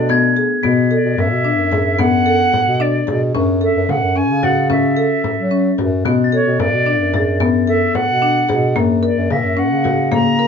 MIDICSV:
0, 0, Header, 1, 7, 480
1, 0, Start_track
1, 0, Tempo, 542005
1, 562, Time_signature, 5, 3, 24, 8
1, 9277, End_track
2, 0, Start_track
2, 0, Title_t, "Glockenspiel"
2, 0, Program_c, 0, 9
2, 92, Note_on_c, 0, 92, 69
2, 557, Note_on_c, 0, 95, 48
2, 772, Note_off_c, 0, 92, 0
2, 2161, Note_off_c, 0, 95, 0
2, 3925, Note_on_c, 0, 93, 47
2, 5358, Note_on_c, 0, 90, 45
2, 5518, Note_off_c, 0, 93, 0
2, 5528, Note_on_c, 0, 93, 44
2, 6316, Note_off_c, 0, 93, 0
2, 6326, Note_on_c, 0, 93, 46
2, 6961, Note_off_c, 0, 90, 0
2, 7925, Note_off_c, 0, 93, 0
2, 8251, Note_on_c, 0, 94, 44
2, 9277, Note_off_c, 0, 94, 0
2, 9277, End_track
3, 0, Start_track
3, 0, Title_t, "Flute"
3, 0, Program_c, 1, 73
3, 0, Note_on_c, 1, 74, 81
3, 325, Note_off_c, 1, 74, 0
3, 825, Note_on_c, 1, 74, 67
3, 1059, Note_on_c, 1, 76, 86
3, 1072, Note_off_c, 1, 74, 0
3, 1772, Note_on_c, 1, 78, 99
3, 1785, Note_off_c, 1, 76, 0
3, 2488, Note_on_c, 1, 74, 75
3, 2501, Note_off_c, 1, 78, 0
3, 2845, Note_off_c, 1, 74, 0
3, 3218, Note_on_c, 1, 76, 72
3, 3453, Note_on_c, 1, 78, 82
3, 3466, Note_off_c, 1, 76, 0
3, 3689, Note_on_c, 1, 80, 92
3, 3702, Note_off_c, 1, 78, 0
3, 3929, Note_on_c, 1, 78, 82
3, 3943, Note_off_c, 1, 80, 0
3, 4166, Note_off_c, 1, 78, 0
3, 4170, Note_on_c, 1, 76, 74
3, 5090, Note_off_c, 1, 76, 0
3, 5607, Note_on_c, 1, 73, 82
3, 5837, Note_on_c, 1, 74, 99
3, 5850, Note_off_c, 1, 73, 0
3, 6558, Note_off_c, 1, 74, 0
3, 6797, Note_on_c, 1, 76, 84
3, 7038, Note_on_c, 1, 78, 103
3, 7052, Note_off_c, 1, 76, 0
3, 7759, Note_off_c, 1, 78, 0
3, 8016, Note_on_c, 1, 74, 69
3, 8253, Note_on_c, 1, 76, 77
3, 8266, Note_off_c, 1, 74, 0
3, 8488, Note_on_c, 1, 78, 88
3, 8501, Note_off_c, 1, 76, 0
3, 8964, Note_off_c, 1, 78, 0
3, 8971, Note_on_c, 1, 82, 94
3, 9277, Note_off_c, 1, 82, 0
3, 9277, End_track
4, 0, Start_track
4, 0, Title_t, "Marimba"
4, 0, Program_c, 2, 12
4, 80, Note_on_c, 2, 59, 72
4, 216, Note_off_c, 2, 59, 0
4, 324, Note_on_c, 2, 68, 64
4, 458, Note_off_c, 2, 68, 0
4, 560, Note_on_c, 2, 59, 75
4, 696, Note_off_c, 2, 59, 0
4, 804, Note_on_c, 2, 69, 67
4, 1074, Note_off_c, 2, 69, 0
4, 1280, Note_on_c, 2, 62, 68
4, 1416, Note_off_c, 2, 62, 0
4, 1520, Note_on_c, 2, 68, 61
4, 1655, Note_off_c, 2, 68, 0
4, 1758, Note_on_c, 2, 59, 77
4, 1894, Note_off_c, 2, 59, 0
4, 2001, Note_on_c, 2, 69, 67
4, 2271, Note_off_c, 2, 69, 0
4, 2480, Note_on_c, 2, 62, 71
4, 2615, Note_off_c, 2, 62, 0
4, 2720, Note_on_c, 2, 68, 60
4, 2856, Note_off_c, 2, 68, 0
4, 2963, Note_on_c, 2, 61, 80
4, 3098, Note_off_c, 2, 61, 0
4, 3198, Note_on_c, 2, 69, 73
4, 3469, Note_off_c, 2, 69, 0
4, 3681, Note_on_c, 2, 61, 71
4, 3817, Note_off_c, 2, 61, 0
4, 3922, Note_on_c, 2, 66, 63
4, 4057, Note_off_c, 2, 66, 0
4, 4160, Note_on_c, 2, 61, 79
4, 4296, Note_off_c, 2, 61, 0
4, 4398, Note_on_c, 2, 69, 70
4, 4669, Note_off_c, 2, 69, 0
4, 4878, Note_on_c, 2, 61, 69
4, 5014, Note_off_c, 2, 61, 0
4, 5120, Note_on_c, 2, 66, 57
4, 5256, Note_off_c, 2, 66, 0
4, 5362, Note_on_c, 2, 59, 76
4, 5497, Note_off_c, 2, 59, 0
4, 5600, Note_on_c, 2, 69, 65
4, 5871, Note_off_c, 2, 69, 0
4, 6078, Note_on_c, 2, 62, 72
4, 6214, Note_off_c, 2, 62, 0
4, 6322, Note_on_c, 2, 68, 61
4, 6456, Note_off_c, 2, 68, 0
4, 6556, Note_on_c, 2, 59, 80
4, 6692, Note_off_c, 2, 59, 0
4, 6797, Note_on_c, 2, 69, 70
4, 7068, Note_off_c, 2, 69, 0
4, 7280, Note_on_c, 2, 62, 74
4, 7415, Note_off_c, 2, 62, 0
4, 7516, Note_on_c, 2, 68, 69
4, 7652, Note_off_c, 2, 68, 0
4, 7756, Note_on_c, 2, 58, 78
4, 7892, Note_off_c, 2, 58, 0
4, 7994, Note_on_c, 2, 70, 75
4, 8266, Note_off_c, 2, 70, 0
4, 8473, Note_on_c, 2, 61, 75
4, 8610, Note_off_c, 2, 61, 0
4, 8715, Note_on_c, 2, 66, 65
4, 8852, Note_off_c, 2, 66, 0
4, 8959, Note_on_c, 2, 58, 82
4, 9094, Note_off_c, 2, 58, 0
4, 9201, Note_on_c, 2, 70, 68
4, 9277, Note_off_c, 2, 70, 0
4, 9277, End_track
5, 0, Start_track
5, 0, Title_t, "Woodwind section"
5, 0, Program_c, 3, 71
5, 0, Note_on_c, 3, 47, 66
5, 0, Note_on_c, 3, 57, 60
5, 0, Note_on_c, 3, 62, 67
5, 552, Note_off_c, 3, 47, 0
5, 553, Note_off_c, 3, 57, 0
5, 553, Note_off_c, 3, 62, 0
5, 9277, End_track
6, 0, Start_track
6, 0, Title_t, "Bass clarinet"
6, 0, Program_c, 4, 71
6, 0, Note_on_c, 4, 47, 73
6, 428, Note_off_c, 4, 47, 0
6, 562, Note_on_c, 4, 47, 79
6, 863, Note_off_c, 4, 47, 0
6, 921, Note_on_c, 4, 47, 67
6, 1022, Note_off_c, 4, 47, 0
6, 1039, Note_on_c, 4, 42, 78
6, 1163, Note_on_c, 4, 47, 69
6, 1177, Note_off_c, 4, 42, 0
6, 1399, Note_on_c, 4, 42, 73
6, 1412, Note_off_c, 4, 47, 0
6, 2203, Note_off_c, 4, 42, 0
6, 2367, Note_on_c, 4, 47, 73
6, 2666, Note_off_c, 4, 47, 0
6, 2728, Note_on_c, 4, 47, 83
6, 2926, Note_off_c, 4, 47, 0
6, 2964, Note_on_c, 4, 42, 83
6, 3264, Note_off_c, 4, 42, 0
6, 3328, Note_on_c, 4, 42, 74
6, 3426, Note_off_c, 4, 42, 0
6, 3442, Note_on_c, 4, 49, 79
6, 3566, Note_on_c, 4, 42, 71
6, 3579, Note_off_c, 4, 49, 0
6, 3806, Note_on_c, 4, 49, 74
6, 3819, Note_off_c, 4, 42, 0
6, 4607, Note_off_c, 4, 49, 0
6, 4766, Note_on_c, 4, 54, 67
6, 5065, Note_off_c, 4, 54, 0
6, 5127, Note_on_c, 4, 42, 81
6, 5325, Note_off_c, 4, 42, 0
6, 5358, Note_on_c, 4, 47, 74
6, 5660, Note_off_c, 4, 47, 0
6, 5725, Note_on_c, 4, 47, 74
6, 5824, Note_off_c, 4, 47, 0
6, 5844, Note_on_c, 4, 42, 78
6, 5964, Note_on_c, 4, 47, 71
6, 5977, Note_off_c, 4, 42, 0
6, 6202, Note_on_c, 4, 42, 75
6, 6215, Note_off_c, 4, 47, 0
6, 7004, Note_off_c, 4, 42, 0
6, 7164, Note_on_c, 4, 47, 70
6, 7463, Note_off_c, 4, 47, 0
6, 7525, Note_on_c, 4, 47, 90
6, 7724, Note_off_c, 4, 47, 0
6, 7767, Note_on_c, 4, 42, 83
6, 8065, Note_off_c, 4, 42, 0
6, 8120, Note_on_c, 4, 42, 78
6, 8220, Note_off_c, 4, 42, 0
6, 8238, Note_on_c, 4, 49, 84
6, 8361, Note_on_c, 4, 42, 77
6, 8374, Note_off_c, 4, 49, 0
6, 8600, Note_on_c, 4, 49, 77
6, 8614, Note_off_c, 4, 42, 0
6, 9277, Note_off_c, 4, 49, 0
6, 9277, End_track
7, 0, Start_track
7, 0, Title_t, "Frame drum"
7, 85, Note_on_c, 9, 64, 49
7, 174, Note_off_c, 9, 64, 0
7, 568, Note_on_c, 9, 64, 51
7, 657, Note_off_c, 9, 64, 0
7, 1047, Note_on_c, 9, 64, 58
7, 1136, Note_off_c, 9, 64, 0
7, 1526, Note_on_c, 9, 64, 57
7, 1615, Note_off_c, 9, 64, 0
7, 1763, Note_on_c, 9, 64, 64
7, 1852, Note_off_c, 9, 64, 0
7, 2244, Note_on_c, 9, 64, 58
7, 2333, Note_off_c, 9, 64, 0
7, 2727, Note_on_c, 9, 64, 51
7, 2815, Note_off_c, 9, 64, 0
7, 2964, Note_on_c, 9, 64, 52
7, 3052, Note_off_c, 9, 64, 0
7, 3444, Note_on_c, 9, 64, 52
7, 3533, Note_off_c, 9, 64, 0
7, 3925, Note_on_c, 9, 64, 55
7, 4014, Note_off_c, 9, 64, 0
7, 4161, Note_on_c, 9, 64, 56
7, 4249, Note_off_c, 9, 64, 0
7, 4641, Note_on_c, 9, 64, 55
7, 4730, Note_off_c, 9, 64, 0
7, 5123, Note_on_c, 9, 64, 52
7, 5211, Note_off_c, 9, 64, 0
7, 5361, Note_on_c, 9, 64, 56
7, 5449, Note_off_c, 9, 64, 0
7, 5841, Note_on_c, 9, 64, 56
7, 5930, Note_off_c, 9, 64, 0
7, 6319, Note_on_c, 9, 64, 55
7, 6408, Note_off_c, 9, 64, 0
7, 6555, Note_on_c, 9, 64, 56
7, 6644, Note_off_c, 9, 64, 0
7, 7039, Note_on_c, 9, 64, 56
7, 7128, Note_off_c, 9, 64, 0
7, 7523, Note_on_c, 9, 64, 52
7, 7611, Note_off_c, 9, 64, 0
7, 7759, Note_on_c, 9, 64, 54
7, 7848, Note_off_c, 9, 64, 0
7, 8240, Note_on_c, 9, 64, 55
7, 8329, Note_off_c, 9, 64, 0
7, 8723, Note_on_c, 9, 64, 53
7, 8812, Note_off_c, 9, 64, 0
7, 8960, Note_on_c, 9, 64, 58
7, 9049, Note_off_c, 9, 64, 0
7, 9277, End_track
0, 0, End_of_file